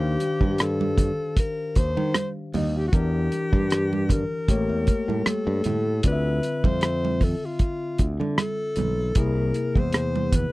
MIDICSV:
0, 0, Header, 1, 6, 480
1, 0, Start_track
1, 0, Tempo, 779221
1, 1801, Time_signature, 4, 2, 24, 8
1, 6481, End_track
2, 0, Start_track
2, 0, Title_t, "Alto saxophone"
2, 0, Program_c, 0, 65
2, 0, Note_on_c, 0, 67, 99
2, 379, Note_on_c, 0, 69, 93
2, 388, Note_off_c, 0, 67, 0
2, 850, Note_off_c, 0, 69, 0
2, 857, Note_on_c, 0, 70, 96
2, 1098, Note_on_c, 0, 72, 87
2, 1107, Note_off_c, 0, 70, 0
2, 1409, Note_off_c, 0, 72, 0
2, 1578, Note_on_c, 0, 63, 77
2, 1707, Note_on_c, 0, 67, 80
2, 1716, Note_off_c, 0, 63, 0
2, 1770, Note_off_c, 0, 67, 0
2, 1772, Note_on_c, 0, 66, 64
2, 1818, Note_on_c, 0, 67, 99
2, 1827, Note_off_c, 0, 66, 0
2, 2536, Note_on_c, 0, 70, 96
2, 2545, Note_off_c, 0, 67, 0
2, 3260, Note_on_c, 0, 69, 88
2, 3269, Note_off_c, 0, 70, 0
2, 3731, Note_off_c, 0, 69, 0
2, 3741, Note_on_c, 0, 71, 91
2, 4104, Note_on_c, 0, 72, 91
2, 4113, Note_off_c, 0, 71, 0
2, 4458, Note_on_c, 0, 69, 76
2, 4467, Note_off_c, 0, 72, 0
2, 4591, Note_on_c, 0, 65, 90
2, 4600, Note_off_c, 0, 69, 0
2, 5012, Note_off_c, 0, 65, 0
2, 5182, Note_on_c, 0, 69, 89
2, 5655, Note_on_c, 0, 70, 92
2, 5664, Note_off_c, 0, 69, 0
2, 6029, Note_on_c, 0, 72, 92
2, 6038, Note_off_c, 0, 70, 0
2, 6380, Note_on_c, 0, 71, 77
2, 6389, Note_off_c, 0, 72, 0
2, 6481, Note_off_c, 0, 71, 0
2, 6481, End_track
3, 0, Start_track
3, 0, Title_t, "Tine electric piano"
3, 0, Program_c, 1, 4
3, 0, Control_c, 1, 64, 127
3, 0, Note_on_c, 1, 51, 56
3, 0, Note_on_c, 1, 62, 54
3, 0, Note_on_c, 1, 67, 53
3, 0, Note_on_c, 1, 72, 50
3, 0, Note_on_c, 1, 77, 64
3, 1773, Note_off_c, 1, 51, 0
3, 1775, Note_off_c, 1, 62, 0
3, 1778, Note_off_c, 1, 67, 0
3, 1778, Note_off_c, 1, 72, 0
3, 1798, Note_on_c, 1, 52, 57
3, 1800, Note_off_c, 1, 77, 0
3, 1802, Note_on_c, 1, 62, 55
3, 1808, Control_c, 1, 64, 0
3, 1809, Note_on_c, 1, 67, 50
3, 1813, Note_on_c, 1, 70, 58
3, 1907, Control_c, 1, 64, 127
3, 2741, Note_off_c, 1, 52, 0
3, 2743, Note_off_c, 1, 62, 0
3, 2747, Note_off_c, 1, 67, 0
3, 2748, Note_off_c, 1, 70, 0
3, 2763, Note_on_c, 1, 57, 57
3, 2767, Note_on_c, 1, 67, 55
3, 2771, Control_c, 1, 64, 0
3, 2773, Note_on_c, 1, 58, 51
3, 2777, Note_on_c, 1, 73, 61
3, 2874, Control_c, 1, 64, 127
3, 3703, Note_off_c, 1, 57, 0
3, 3706, Note_off_c, 1, 67, 0
3, 3709, Note_off_c, 1, 58, 0
3, 3711, Note_off_c, 1, 73, 0
3, 3719, Note_on_c, 1, 50, 53
3, 3725, Note_on_c, 1, 60, 53
3, 3729, Control_c, 1, 64, 0
3, 3729, Note_on_c, 1, 65, 50
3, 3731, Note_on_c, 1, 74, 45
3, 3770, Note_off_c, 1, 74, 0
3, 3773, Note_on_c, 1, 76, 61
3, 3832, Control_c, 1, 64, 127
3, 5616, Note_off_c, 1, 50, 0
3, 5619, Note_off_c, 1, 60, 0
3, 5621, Note_off_c, 1, 65, 0
3, 5638, Note_on_c, 1, 48, 57
3, 5642, Note_on_c, 1, 58, 51
3, 5643, Note_off_c, 1, 76, 0
3, 5646, Note_on_c, 1, 64, 53
3, 5650, Control_c, 1, 64, 0
3, 5651, Note_on_c, 1, 68, 64
3, 5755, Control_c, 1, 64, 127
3, 6481, Note_off_c, 1, 48, 0
3, 6481, Note_off_c, 1, 58, 0
3, 6481, Note_off_c, 1, 64, 0
3, 6481, Note_off_c, 1, 68, 0
3, 6481, End_track
4, 0, Start_track
4, 0, Title_t, "Fingered electric bass"
4, 0, Program_c, 2, 33
4, 0, Note_on_c, 2, 39, 93
4, 98, Note_off_c, 2, 39, 0
4, 251, Note_on_c, 2, 43, 81
4, 683, Note_off_c, 2, 43, 0
4, 1086, Note_on_c, 2, 39, 72
4, 1200, Note_off_c, 2, 39, 0
4, 1213, Note_on_c, 2, 51, 77
4, 1312, Note_off_c, 2, 51, 0
4, 1566, Note_on_c, 2, 39, 75
4, 1780, Note_off_c, 2, 39, 0
4, 1804, Note_on_c, 2, 40, 88
4, 2019, Note_off_c, 2, 40, 0
4, 2172, Note_on_c, 2, 43, 92
4, 2604, Note_off_c, 2, 43, 0
4, 2762, Note_on_c, 2, 33, 86
4, 2878, Note_off_c, 2, 33, 0
4, 2891, Note_on_c, 2, 40, 75
4, 2991, Note_off_c, 2, 40, 0
4, 3131, Note_on_c, 2, 45, 70
4, 3231, Note_off_c, 2, 45, 0
4, 3368, Note_on_c, 2, 43, 83
4, 3469, Note_off_c, 2, 43, 0
4, 3484, Note_on_c, 2, 45, 80
4, 3699, Note_off_c, 2, 45, 0
4, 3721, Note_on_c, 2, 38, 95
4, 3938, Note_off_c, 2, 38, 0
4, 4091, Note_on_c, 2, 41, 80
4, 4523, Note_off_c, 2, 41, 0
4, 4923, Note_on_c, 2, 38, 69
4, 5039, Note_off_c, 2, 38, 0
4, 5050, Note_on_c, 2, 50, 77
4, 5150, Note_off_c, 2, 50, 0
4, 5401, Note_on_c, 2, 35, 73
4, 5618, Note_off_c, 2, 35, 0
4, 5642, Note_on_c, 2, 36, 93
4, 5858, Note_off_c, 2, 36, 0
4, 6009, Note_on_c, 2, 40, 86
4, 6442, Note_off_c, 2, 40, 0
4, 6481, End_track
5, 0, Start_track
5, 0, Title_t, "Muted fingered electric bass strokes"
5, 3242, Note_on_c, 9, 29, 37
5, 3303, Note_off_c, 9, 29, 0
5, 6481, End_track
6, 0, Start_track
6, 0, Title_t, "Drums"
6, 124, Note_on_c, 9, 42, 60
6, 128, Note_on_c, 9, 62, 25
6, 186, Note_off_c, 9, 42, 0
6, 190, Note_off_c, 9, 62, 0
6, 251, Note_on_c, 9, 36, 76
6, 254, Note_on_c, 9, 63, 68
6, 312, Note_off_c, 9, 36, 0
6, 315, Note_off_c, 9, 63, 0
6, 360, Note_on_c, 9, 42, 83
6, 367, Note_on_c, 9, 62, 30
6, 370, Note_on_c, 9, 37, 102
6, 421, Note_off_c, 9, 42, 0
6, 428, Note_off_c, 9, 62, 0
6, 432, Note_off_c, 9, 37, 0
6, 497, Note_on_c, 9, 63, 69
6, 558, Note_off_c, 9, 63, 0
6, 600, Note_on_c, 9, 64, 67
6, 602, Note_on_c, 9, 36, 78
6, 604, Note_on_c, 9, 42, 63
6, 662, Note_off_c, 9, 64, 0
6, 663, Note_off_c, 9, 36, 0
6, 665, Note_off_c, 9, 42, 0
6, 841, Note_on_c, 9, 36, 86
6, 841, Note_on_c, 9, 42, 83
6, 842, Note_on_c, 9, 62, 30
6, 903, Note_off_c, 9, 36, 0
6, 903, Note_off_c, 9, 42, 0
6, 903, Note_off_c, 9, 62, 0
6, 1081, Note_on_c, 9, 42, 59
6, 1085, Note_on_c, 9, 36, 73
6, 1143, Note_off_c, 9, 42, 0
6, 1147, Note_off_c, 9, 36, 0
6, 1215, Note_on_c, 9, 63, 63
6, 1277, Note_off_c, 9, 63, 0
6, 1320, Note_on_c, 9, 63, 57
6, 1321, Note_on_c, 9, 37, 94
6, 1324, Note_on_c, 9, 42, 66
6, 1382, Note_off_c, 9, 37, 0
6, 1382, Note_off_c, 9, 63, 0
6, 1385, Note_off_c, 9, 42, 0
6, 1562, Note_on_c, 9, 46, 45
6, 1570, Note_on_c, 9, 62, 26
6, 1570, Note_on_c, 9, 63, 60
6, 1570, Note_on_c, 9, 64, 54
6, 1624, Note_off_c, 9, 46, 0
6, 1632, Note_off_c, 9, 62, 0
6, 1632, Note_off_c, 9, 63, 0
6, 1632, Note_off_c, 9, 64, 0
6, 1804, Note_on_c, 9, 36, 103
6, 1804, Note_on_c, 9, 42, 78
6, 1804, Note_on_c, 9, 62, 29
6, 1865, Note_off_c, 9, 42, 0
6, 1866, Note_off_c, 9, 36, 0
6, 1866, Note_off_c, 9, 62, 0
6, 2045, Note_on_c, 9, 42, 57
6, 2049, Note_on_c, 9, 62, 26
6, 2107, Note_off_c, 9, 42, 0
6, 2110, Note_off_c, 9, 62, 0
6, 2173, Note_on_c, 9, 36, 83
6, 2175, Note_on_c, 9, 63, 66
6, 2235, Note_off_c, 9, 36, 0
6, 2237, Note_off_c, 9, 63, 0
6, 2282, Note_on_c, 9, 42, 86
6, 2293, Note_on_c, 9, 37, 92
6, 2344, Note_off_c, 9, 42, 0
6, 2354, Note_off_c, 9, 37, 0
6, 2419, Note_on_c, 9, 63, 65
6, 2481, Note_off_c, 9, 63, 0
6, 2519, Note_on_c, 9, 64, 67
6, 2524, Note_on_c, 9, 36, 74
6, 2527, Note_on_c, 9, 42, 65
6, 2581, Note_off_c, 9, 64, 0
6, 2586, Note_off_c, 9, 36, 0
6, 2589, Note_off_c, 9, 42, 0
6, 2762, Note_on_c, 9, 36, 82
6, 2762, Note_on_c, 9, 42, 80
6, 2764, Note_on_c, 9, 62, 29
6, 2824, Note_off_c, 9, 36, 0
6, 2824, Note_off_c, 9, 42, 0
6, 2826, Note_off_c, 9, 62, 0
6, 2999, Note_on_c, 9, 42, 62
6, 3004, Note_on_c, 9, 36, 76
6, 3008, Note_on_c, 9, 62, 30
6, 3061, Note_off_c, 9, 42, 0
6, 3066, Note_off_c, 9, 36, 0
6, 3069, Note_off_c, 9, 62, 0
6, 3139, Note_on_c, 9, 63, 63
6, 3201, Note_off_c, 9, 63, 0
6, 3239, Note_on_c, 9, 62, 27
6, 3239, Note_on_c, 9, 63, 58
6, 3240, Note_on_c, 9, 37, 94
6, 3243, Note_on_c, 9, 42, 70
6, 3301, Note_off_c, 9, 62, 0
6, 3301, Note_off_c, 9, 63, 0
6, 3302, Note_off_c, 9, 37, 0
6, 3305, Note_off_c, 9, 42, 0
6, 3474, Note_on_c, 9, 42, 66
6, 3488, Note_on_c, 9, 62, 25
6, 3488, Note_on_c, 9, 63, 56
6, 3488, Note_on_c, 9, 64, 55
6, 3536, Note_off_c, 9, 42, 0
6, 3550, Note_off_c, 9, 62, 0
6, 3550, Note_off_c, 9, 63, 0
6, 3550, Note_off_c, 9, 64, 0
6, 3716, Note_on_c, 9, 42, 80
6, 3721, Note_on_c, 9, 36, 92
6, 3728, Note_on_c, 9, 62, 28
6, 3777, Note_off_c, 9, 42, 0
6, 3782, Note_off_c, 9, 36, 0
6, 3789, Note_off_c, 9, 62, 0
6, 3962, Note_on_c, 9, 42, 58
6, 3970, Note_on_c, 9, 62, 26
6, 4023, Note_off_c, 9, 42, 0
6, 4031, Note_off_c, 9, 62, 0
6, 4090, Note_on_c, 9, 36, 78
6, 4095, Note_on_c, 9, 63, 70
6, 4152, Note_off_c, 9, 36, 0
6, 4157, Note_off_c, 9, 63, 0
6, 4196, Note_on_c, 9, 42, 80
6, 4206, Note_on_c, 9, 37, 92
6, 4210, Note_on_c, 9, 62, 30
6, 4257, Note_off_c, 9, 42, 0
6, 4268, Note_off_c, 9, 37, 0
6, 4272, Note_off_c, 9, 62, 0
6, 4340, Note_on_c, 9, 63, 66
6, 4402, Note_off_c, 9, 63, 0
6, 4440, Note_on_c, 9, 36, 76
6, 4440, Note_on_c, 9, 64, 64
6, 4442, Note_on_c, 9, 46, 44
6, 4501, Note_off_c, 9, 64, 0
6, 4502, Note_off_c, 9, 36, 0
6, 4504, Note_off_c, 9, 46, 0
6, 4677, Note_on_c, 9, 42, 81
6, 4680, Note_on_c, 9, 36, 84
6, 4684, Note_on_c, 9, 62, 28
6, 4739, Note_off_c, 9, 42, 0
6, 4741, Note_off_c, 9, 36, 0
6, 4746, Note_off_c, 9, 62, 0
6, 4918, Note_on_c, 9, 42, 67
6, 4923, Note_on_c, 9, 36, 73
6, 4980, Note_off_c, 9, 42, 0
6, 4985, Note_off_c, 9, 36, 0
6, 5056, Note_on_c, 9, 63, 65
6, 5118, Note_off_c, 9, 63, 0
6, 5161, Note_on_c, 9, 37, 91
6, 5163, Note_on_c, 9, 63, 55
6, 5164, Note_on_c, 9, 42, 65
6, 5223, Note_off_c, 9, 37, 0
6, 5224, Note_off_c, 9, 63, 0
6, 5226, Note_off_c, 9, 42, 0
6, 5394, Note_on_c, 9, 42, 66
6, 5413, Note_on_c, 9, 63, 57
6, 5413, Note_on_c, 9, 64, 53
6, 5456, Note_off_c, 9, 42, 0
6, 5474, Note_off_c, 9, 63, 0
6, 5474, Note_off_c, 9, 64, 0
6, 5637, Note_on_c, 9, 42, 84
6, 5641, Note_on_c, 9, 36, 103
6, 5647, Note_on_c, 9, 62, 28
6, 5699, Note_off_c, 9, 42, 0
6, 5703, Note_off_c, 9, 36, 0
6, 5709, Note_off_c, 9, 62, 0
6, 5878, Note_on_c, 9, 42, 59
6, 5889, Note_on_c, 9, 62, 28
6, 5940, Note_off_c, 9, 42, 0
6, 5950, Note_off_c, 9, 62, 0
6, 6009, Note_on_c, 9, 36, 79
6, 6018, Note_on_c, 9, 63, 67
6, 6071, Note_off_c, 9, 36, 0
6, 6080, Note_off_c, 9, 63, 0
6, 6114, Note_on_c, 9, 42, 85
6, 6125, Note_on_c, 9, 37, 105
6, 6176, Note_off_c, 9, 42, 0
6, 6186, Note_off_c, 9, 37, 0
6, 6255, Note_on_c, 9, 63, 66
6, 6317, Note_off_c, 9, 63, 0
6, 6359, Note_on_c, 9, 36, 70
6, 6360, Note_on_c, 9, 62, 29
6, 6360, Note_on_c, 9, 64, 67
6, 6361, Note_on_c, 9, 42, 70
6, 6421, Note_off_c, 9, 36, 0
6, 6421, Note_off_c, 9, 62, 0
6, 6421, Note_off_c, 9, 64, 0
6, 6422, Note_off_c, 9, 42, 0
6, 6481, End_track
0, 0, End_of_file